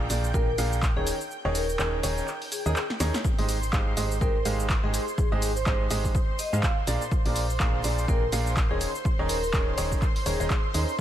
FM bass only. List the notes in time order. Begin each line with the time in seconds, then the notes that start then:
0.10 A#1
0.34 A#1
0.58 A#1
0.97 D#1
1.45 D#1
1.79 D#1
2.03 D#1
2.66 D#2
3.00 D#2
3.39 G#1
3.73 G#1
3.97 G#1
4.21 G#1
4.45 G#1
4.84 G#1
5.32 G#1
5.66 G#1
5.90 G#1
6.53 G#2
6.87 A#1
7.26 A#1
7.60 A#1
7.84 A#1
8.08 A#1
8.32 A#1
8.71 D#1
9.19 D#1
9.53 D#1
9.78 D#1
10.26 D#1
10.40 D#1
10.74 D#2